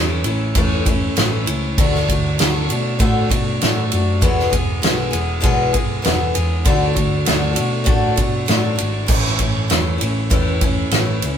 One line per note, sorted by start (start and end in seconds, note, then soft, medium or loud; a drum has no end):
0.00 0.22 E2 medium
0.00 0.25 E3 medium
0.00 0.26 A3 medium
0.00 0.26 C#4 medium
0.00 0.23 E4 medium
0.24 0.52 A1 medium
0.24 0.56 A3 medium
0.24 0.56 C#4 soft
0.24 0.56 E4 medium
0.24 ride medium
0.55 1.09 E2 medium
0.55 0.86 A2 medium
0.55 0.87 E3 medium
0.55 0.87 A3 loud
0.55 0.86 C#4 medium
0.55 0.84 E4 medium
0.55 kick loud
0.55 ride loud
0.85 1.16 A3 soft
0.85 1.17 C#4 medium
0.85 1.17 E4 medium
0.85 kick loud
0.85 ride medium
1.16 1.44 A1 medium
1.16 1.47 E3 medium
1.16 1.48 A3 medium
1.16 1.48 C#4 medium
1.16 1.45 E4 medium
1.16 snare loud
1.16 ride medium
1.46 1.74 C#2 medium
1.46 1.79 C#4 medium
1.46 1.78 E4 medium
1.46 ride medium
1.50 1.78 A3 soft
1.78 2.05 D2 loud
1.78 2.09 D3 medium
1.78 2.09 A3 medium
1.78 2.09 D4 medium
1.78 2.07 F#4 medium
1.78 kick loud
1.78 ride loud
1.95 snare soft
2.08 2.36 D2 medium
2.08 2.39 A3 medium
2.08 2.40 D4 medium
2.08 2.39 F#4 medium
2.08 kick medium
2.08 ride medium
2.38 2.67 D2 medium
2.38 2.69 D3 medium
2.38 2.71 A3 medium
2.38 2.69 D4 medium
2.38 snare loud
2.38 ride loud
2.42 2.68 F#4 medium
2.69 2.97 B2 medium
2.69 2.98 A3 medium
2.69 3.00 D4 medium
2.69 3.00 F#4 medium
2.69 ride medium
2.99 3.27 A2 medium
2.99 3.30 D3 medium
2.99 3.30 A3 medium
2.99 3.29 D4 medium
2.99 3.28 F#4 medium
2.99 kick loud
2.99 ride loud
3.29 3.58 B2 medium
3.29 3.61 A3 soft
3.29 3.61 D4 medium
3.29 3.61 F#4 medium
3.29 kick medium
3.29 ride medium
3.61 3.89 A2 medium
3.61 3.92 D3 medium
3.61 3.92 A3 medium
3.61 3.92 D4 medium
3.61 3.91 F#4 medium
3.61 snare loud
3.61 ride medium
3.92 4.19 F#2 medium
3.92 4.22 A3 medium
3.92 4.22 D4 medium
3.92 4.22 F#4 medium
3.92 ride medium
4.21 4.49 E1 medium
4.21 4.52 E2 medium
4.21 4.53 B2 medium
4.21 4.53 E3 medium
4.21 4.52 G#3 loud
4.21 4.51 B3 loud
4.21 4.49 G#4 loud
4.21 kick loud
4.21 ride loud
4.39 snare soft
4.50 4.79 E1 medium
4.50 4.80 E3 soft
4.50 4.81 G#3 medium
4.50 4.82 B3 medium
4.50 4.82 G#4 medium
4.50 kick medium
4.50 ride medium
4.82 5.10 B1 medium
4.82 5.13 E3 medium
4.82 5.12 G#3 medium
4.82 5.11 B3 medium
4.82 5.09 G#4 medium
4.82 snare loud
4.82 ride medium
5.11 5.40 E1 medium
5.11 5.40 E3 medium
5.11 5.41 G#3 medium
5.11 5.42 B3 medium
5.11 5.42 G#4 medium
5.11 ride medium
5.41 5.97 B1 medium
5.41 5.73 E2 medium
5.41 5.73 B2 medium
5.41 5.73 E3 medium
5.41 5.74 G#3 loud
5.41 5.73 B3 loud
5.41 5.71 G#4 loud
5.41 kick loud
5.41 ride medium
5.73 6.01 E3 soft
5.73 6.02 G#3 medium
5.73 6.04 B3 medium
5.73 6.04 G#4 medium
5.73 kick medium
5.73 ride medium
6.02 6.32 E1 medium
6.02 6.34 E3 medium
6.02 6.35 G#3 medium
6.02 6.34 B3 medium
6.02 6.33 G#4 medium
6.02 snare loud
6.02 ride medium
6.34 6.63 E2 medium
6.34 6.64 E3 soft
6.34 6.65 G#3 medium
6.34 6.66 B3 medium
6.34 6.65 G#4 medium
6.34 ride medium
6.65 6.93 D2 medium
6.65 6.96 D3 medium
6.65 6.95 A3 medium
6.65 6.95 D4 loud
6.65 6.92 F#4 loud
6.65 kick loud
6.65 ride loud
6.93 7.23 D2 medium
6.93 7.25 A3 medium
6.93 7.26 D4 medium
6.93 7.25 F#4 medium
6.93 kick medium
6.93 ride medium
7.25 7.54 D2 medium
7.25 7.56 D3 medium
7.25 7.55 A3 medium
7.25 7.54 D4 medium
7.25 7.52 F#4 medium
7.25 snare loud
7.25 ride loud
7.53 7.84 A3 soft
7.53 7.84 D4 medium
7.53 7.85 F#4 medium
7.53 ride medium
7.59 7.85 B2 medium
7.84 8.14 A2 medium
7.84 8.16 D3 medium
7.84 8.17 A3 medium
7.84 8.16 D4 medium
7.84 8.15 F#4 loud
7.84 kick loud
7.84 ride loud
8.16 8.45 B2 medium
8.16 8.46 A3 soft
8.16 8.48 D4 medium
8.16 8.47 F#4 medium
8.16 kick medium
8.16 ride medium
8.46 8.76 A2 medium
8.46 8.78 D3 medium
8.46 8.78 A3 medium
8.46 8.76 D4 medium
8.46 8.74 F#4 medium
8.46 snare loud
8.46 ride medium
8.76 9.08 D4 medium
8.76 9.08 F#4 medium
8.76 ride medium
8.80 9.07 G#1 medium
8.80 9.07 A3 medium
9.06 9.36 A1 loud
9.06 9.38 A2 medium
9.06 9.39 E3 medium
9.06 9.39 A3 medium
9.06 9.39 C#4 medium
9.06 9.38 E4 medium
9.06 kick loud
9.06 crash loud
9.25 snare soft
9.39 9.66 A1 medium
9.39 9.68 A3 soft
9.39 9.69 C#4 medium
9.39 9.70 E4 medium
9.39 kick medium
9.39 ride medium
9.68 9.97 E2 medium
9.68 10.00 E3 medium
9.68 10.00 A3 medium
9.68 10.00 C#4 medium
9.68 9.97 E4 medium
9.68 snare loud
9.68 ride medium
9.98 10.28 A1 medium
9.98 10.30 C#4 medium
9.98 10.30 E4 medium
9.98 ride medium
10.03 10.29 A3 medium
10.30 10.84 E2 medium
10.30 10.61 A2 medium
10.30 10.61 E3 medium
10.30 10.61 A3 medium
10.30 10.62 C#4 medium
10.30 10.60 E4 medium
10.30 kick loud
10.30 ride loud
10.61 10.93 A3 medium
10.61 10.93 C#4 medium
10.61 10.92 E4 medium
10.61 kick loud
10.61 ride medium
10.91 11.18 A1 medium
10.91 11.23 E3 medium
10.91 11.24 A3 medium
10.91 11.24 C#4 medium
10.91 snare loud
10.91 ride medium
10.96 11.23 E4 medium
11.22 11.38 C#2 medium
11.22 11.38 C#4 medium
11.22 11.38 E4 medium
11.22 ride medium
11.28 11.38 A3 soft